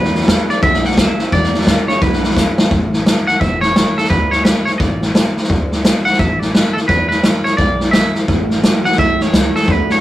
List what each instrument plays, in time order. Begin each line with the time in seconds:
Already playing: clean electric guitar E2 B2 B4, steel-string acoustic guitar E2 B2 E3 G#3 D4 E4, upright bass E2
0.04 snare
0.14 clean electric guitar E2 B2, steel-string acoustic guitar E3 G#3 D4 E4, snare
0.21 snare
0.27 clean electric guitar E2 C#3, steel-string acoustic guitar E3 G#3 D4 E4, kick, snare, hi-hat pedal
0.48 clean electric guitar E2 C#3 D5, steel-string acoustic guitar E3 G#3 D4 E4, muted upright bass stroke, snare
0.61 upright bass B1, steel-string acoustic guitar E2 B2 E3 G#3 D4 E4, clean electric guitar E2 D3 E5, kick, snare
0.73 snare
0.83 clean electric guitar E2 D3 F#5, steel-string acoustic guitar E3 G#3 D4 E4, snare
0.91 snare
0.96 clean electric guitar E2 C#3 E5, steel-string acoustic guitar E3 G#3, kick, snare, hi-hat pedal
1.18 clean electric guitar E2 C#3, steel-string acoustic guitar E3 G#3 D4 E4, muted upright bass stroke, snare
1.31 steel-string acoustic guitar E2 B2 E3 G#3 D4 E4, upright bass E2, clean electric guitar E2 B2 D5, kick, snare
1.43 snare
1.52 clean electric guitar E2 B2, steel-string acoustic guitar E3 G#3 D4 E4, snare
1.61 snare
1.66 clean electric guitar E2 C#3, steel-string acoustic guitar E3 G#3, kick, snare, hi-hat pedal
1.87 clean electric guitar E2 C#3 C#5, steel-string acoustic guitar E3 G#3 D4 E4, muted upright bass stroke, snare
2.00 upright bass B1, steel-string acoustic guitar E2 B2 E3 G#3 D4 E4, clean electric guitar E2 D3 B4, kick, snare
2.13 snare
2.22 clean electric guitar E2 D3, steel-string acoustic guitar E3 G#3 D4 E4, snare
2.30 snare
2.36 clean electric guitar E2 C#3, steel-string acoustic guitar E3 G#3 E4, kick, snare, hi-hat pedal
2.58 clean electric guitar E2 C#3, steel-string acoustic guitar E3 G#3 D4 E4, muted upright bass stroke, snare
2.71 upright bass A1, steel-string acoustic guitar A2 E3 A3 C#4 E4, kick, snare
2.92 steel-string acoustic guitar A3 C#4 E4, snare
3.05 steel-string acoustic guitar E3 C#4 E4, snare, hi-hat pedal
3.27 steel-string acoustic guitar A3 C#4 E4, clean electric guitar F#5, muted upright bass stroke, snare
3.40 upright bass E1, steel-string acoustic guitar A2 E3 A3 C#4 E4, clean electric guitar E5, kick, snare
3.61 steel-string acoustic guitar A3 C#4 E4, clean electric guitar C#5, snare
3.76 steel-string acoustic guitar E3, snare, hi-hat pedal
3.97 steel-string acoustic guitar A3 C#4 E4, clean electric guitar A4, muted upright bass stroke, snare
4.04 snare
4.10 upright bass D2, steel-string acoustic guitar D3 A3 D4, clean electric guitar B4, kick, snare
4.31 steel-string acoustic guitar A3 D4 F#4, clean electric guitar C#5, snare
4.44 steel-string acoustic guitar D3 A3 D4, clean electric guitar B4, snare, hi-hat pedal
4.65 steel-string acoustic guitar A3 D4 F#4, clean electric guitar C#5, muted upright bass stroke, snare
4.78 upright bass A1, steel-string acoustic guitar D3 A3 D4 F#4, clean electric guitar D5, kick, snare
5.00 steel-string acoustic guitar A3 D4 F#4, snare
5.14 steel-string acoustic guitar D3 A3, snare, hi-hat pedal
5.35 steel-string acoustic guitar A3 D4 F#4, muted upright bass stroke, snare
5.44 snare
5.49 upright bass D2, steel-string acoustic guitar D3 A3 D4 F#4, kick, snare
5.69 steel-string acoustic guitar A3 D4 F#4, snare
5.82 steel-string acoustic guitar D3 A3 D4, snare, hi-hat pedal
6.05 steel-string acoustic guitar A3 D4 F#4, clean electric guitar F#5, muted upright bass stroke, snare
6.13 snare
6.18 upright bass A1, steel-string acoustic guitar D3 A3 D4 F#4, clean electric guitar E5, kick, snare
6.38 steel-string acoustic guitar A3 D4 F#4, clean electric guitar D5, snare
6.52 steel-string acoustic guitar D3 A3 D4 F#4, clean electric guitar B4, snare, hi-hat pedal
6.73 steel-string acoustic guitar A3 D4 F#4, clean electric guitar A4, muted upright bass stroke, snare
6.87 steel-string acoustic guitar E2 B2 E3 G#3 D4 E4, upright bass E2, clean electric guitar B4, kick, snare
7.09 steel-string acoustic guitar E3 G#3 D4 E4, clean electric guitar B4, snare
7.22 steel-string acoustic guitar E3 G#3 E4, snare, hi-hat pedal
7.44 steel-string acoustic guitar E3 G#3 D4 E4, clean electric guitar C#5, muted upright bass stroke, snare
7.57 upright bass B1, steel-string acoustic guitar E2 B2 E3 G#3 D4 E4, clean electric guitar D5, kick, snare
7.79 steel-string acoustic guitar E3 G#3 D4 E4, snare
7.91 steel-string acoustic guitar E3 G#3, clean electric guitar E5, snare, hi-hat pedal
8.14 steel-string acoustic guitar E3 G#3 D4 E4, muted upright bass stroke, snare
8.27 upright bass A1, steel-string acoustic guitar A2 E3 A3 C#4 E4, clean electric guitar A2 E3, kick, snare
8.48 steel-string acoustic guitar A3 C#4 E4, snare
8.62 clean electric guitar A2 F#3, steel-string acoustic guitar E3 A3 E4, snare, hi-hat pedal
8.84 clean electric guitar A2 F#3 F#5, steel-string acoustic guitar A3 C#4 E4, muted upright bass stroke, snare
8.92 snare
8.97 upright bass B1, steel-string acoustic guitar A2 E3 A3 C#4 E4, clean electric guitar A2 E3 E5, kick, snare
9.19 steel-string acoustic guitar A3 C#4 E4, clean electric guitar C#5, muted upright bass stroke, snare
9.32 upright bass C#2, clean electric guitar A2 E3, steel-string acoustic guitar E3 A3, snare, hi-hat pedal
9.53 clean electric guitar A2 E3 A4, steel-string acoustic guitar A3 C#4 E4, snare
9.62 snare
9.67 upright bass D2, steel-string acoustic guitar D3 A3 D4 F#4, clean electric guitar D3 A3 B4, kick, snare
9.89 steel-string acoustic guitar A3 D4 F#4, clean electric guitar C#5, muted upright bass stroke, snare